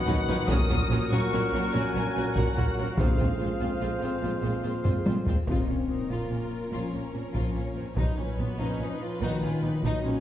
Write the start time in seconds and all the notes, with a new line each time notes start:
Already playing: D#3 F#3 C#4 F#4 B4 D#5 F#5
0.07 A#1 A#2 F#3 C#4 D#4 B4, taiko low
0.28 A#1 A#2 F#3 C#4 D#4 B4
0.47 A#1 A#2 F#3 C#4 F#4 A#4 F#5 D#6, taiko
0.51 C#4
0.69 A#1 A#2 F#3 C#4 F#4 A#4, taiko low
0.90 A#1 A#2 F#3 C#4 F#4 A#4
1.11 A#1 A#2 F#3 C#4 F#4 A#4 C#6
1.31 A#1 A#2 F#3 C#4 F#4 A#4
1.52 A#1 A#2 F#3 C#4
1.56 F#4 A#4
1.73 A#1 A#2 F#3 C#4 F#4 A#4 G#5
1.94 A#1 A#2 F#3 C#4 F#4 A#4
2.15 A#1 A#2 F#3 C#4 F#4 A#4
2.35 A#1 A#2 F#3 C#4 F#4 A#4 F#5, taiko
2.56 A#1 A#2 F#3 C#4 F#4 A#4, taiko low
2.78 A#1 A#2 F#3 C#4 F#4 A#4
2.97 A#1 F2 A#2 G#3 C4 F4 G#4 C5 F5, taiko
3.18 A#1 A#2 G#3 C4 F4 C5, taiko low
3.40 A#1 A#2 G#3 C4 F4 C5
3.60 A#1 A#2 G#3 C4 F4 C5
3.80 A#1 A#2 G#3 C4 F4 C5
4.01 A#1 A#2 G#3 C4 F4 C5
4.22 A#1 A#2 G#3 C4 F4 C5
4.42 A#1 A#2 G#3 C4 F4 C5
4.63 A#1 A#2 G#3 C4 F4 C5
4.84 A#1 A#2 G#3 C4 F4 C5, taiko low-mid
5.05 A#1 A#2 G#3 C4 F4 C5, taiko high
5.26 A#1 A#2 G#3 C4 F4 C5, taiko low
5.47 A#1 A#2 C4 D#4 F4 A#4 C#5, taiko, impact
5.68 A#1 A#2 C#4
5.89 A#1 A#2 C4 D#4
6.09 A#1 A#2 A#3 F4
6.30 A#1 A#2 C#4
6.72 A#1 A#2 F3 C#4 F4
6.93 A#1 A#2 C#4
7.13 A#1 A#2 C4
7.33 A#1 A#2 F3 F4, taiko
7.54 A#1 A#2 C#4
7.76 A#1 A#2 C4
7.95 A#1 A#2 F#3 D#4 B4, taiko
8.18 A#1 A#2 C#4
8.39 A#1 A#2 B3
8.58 A#1 A#2 F3 C#4 D#4
8.79 A#1 A#2 C#4 D#4
9.02 F4
9.20 A#1 A#2 D#3 D#4 F#4
9.42 A#1 A#2 C#4 F4
9.62 A#1 A#2 B3 D#4
9.83 A#1 A#2 F#3 D#4, taiko
10.04 A#1 A#2 C#4